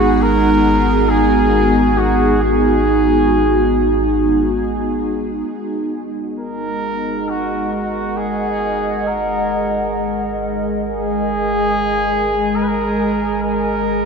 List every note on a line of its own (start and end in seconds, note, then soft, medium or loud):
0.00 5.44 G#1 medium
0.00 5.56 G#3 medium
0.00 7.08 B3 medium
0.00 7.90 D#4 medium
0.00 0.23 F#4 medium
0.00 0.33 G#4 medium
0.00 5.56 G#4 medium
0.09 6.42 F#4 medium
0.22 1.11 A#4 loud
1.09 1.99 G#4 medium
1.98 2.42 F#4 medium
2.41 4.61 G#4 medium
5.48 14.05 G#1 medium
5.48 14.05 G#3 medium
5.53 14.05 G#4 medium
5.73 14.05 D#5 medium
6.02 14.05 A#4 medium
6.38 7.30 A#4 loud
6.85 11.22 F#5 medium
7.29 7.71 F#4 medium
7.73 8.18 F#4 medium
8.17 9.08 G#4 medium
9.07 10.36 A#4 medium
10.83 12.57 G#4 loud
10.96 14.05 G#5 medium
12.55 12.63 A#4 medium
12.62 12.69 B4 medium
12.68 13.42 A#4 medium
13.42 14.05 A#4 medium